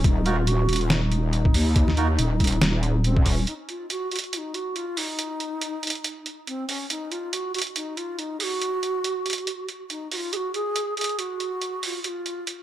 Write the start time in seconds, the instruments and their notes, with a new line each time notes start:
0.04 wobble bass D#1, ney D#4 F4, kick, closed hi-hat
0.26 melodica D#4 F4 F#4 A#4, ney F#4, closed hi-hat
0.31 ney F4
0.47 ney F#4, closed hi-hat
0.69 wobble bass D#1, closed hi-hat
0.73 closed hi-hat
0.76 closed hi-hat
0.81 closed hi-hat
0.90 ney D#4, snare, closed hi-hat
1.12 closed hi-hat
1.33 closed hi-hat
1.45 kick
1.54 wobble bass D#2, open hi-hat
1.76 kick, closed hi-hat
1.88 snare
1.97 melodica D#4 F4 F#4 A#4, closed hi-hat
2.19 wobble bass D#1, closed hi-hat
2.40 kick, closed hi-hat
2.44 closed hi-hat
2.47 closed hi-hat
2.52 closed hi-hat
2.62 wobble bass D#1, snare, closed hi-hat
2.83 closed hi-hat
3.04 ney C4, closed hi-hat
3.17 kick
3.26 ney C#4, kick, open hi-hat
3.47 ney D#4, closed hi-hat
3.69 ney F4, closed hi-hat
3.90 ney F#4, closed hi-hat
4.11 ney F#4, closed hi-hat
4.16 closed hi-hat
4.19 closed hi-hat
4.24 closed hi-hat
4.33 ney F4, closed hi-hat
4.38 ney D#4
4.54 ney F#4, closed hi-hat
4.76 ney F4, closed hi-hat
4.97 ney D#4, open hi-hat
5.19 closed hi-hat
5.40 closed hi-hat
5.61 closed hi-hat
5.83 closed hi-hat
5.87 closed hi-hat
5.90 closed hi-hat
5.95 closed hi-hat
6.04 closed hi-hat
6.26 closed hi-hat
6.47 ney C4, closed hi-hat
6.69 ney C#4, open hi-hat
6.90 ney D#4, closed hi-hat
7.11 ney F4, closed hi-hat
7.33 ney F#4, closed hi-hat
7.54 ney F#4, closed hi-hat
7.59 closed hi-hat
7.62 closed hi-hat
7.67 closed hi-hat
7.76 ney D#4, closed hi-hat
7.97 ney F4, closed hi-hat
8.18 ney D#4, closed hi-hat
8.40 ney F#4 G#4, open hi-hat
8.62 closed hi-hat
8.83 closed hi-hat
9.04 closed hi-hat
9.26 closed hi-hat
9.30 closed hi-hat
9.33 closed hi-hat
9.38 closed hi-hat
9.47 closed hi-hat
9.69 closed hi-hat
9.90 ney D#4, closed hi-hat
10.11 ney F#4, open hi-hat
10.16 ney F4
10.33 ney F#4 G#4, closed hi-hat
10.54 ney G#4, closed hi-hat
10.76 closed hi-hat
10.97 ney G#4, closed hi-hat
11.01 closed hi-hat
11.04 closed hi-hat
11.09 closed hi-hat
11.19 ney F#4, closed hi-hat
11.40 closed hi-hat
11.62 closed hi-hat
11.83 ney F#4, open hi-hat
11.87 ney F4
12.04 ney F4 F#4, closed hi-hat
12.26 closed hi-hat
12.47 closed hi-hat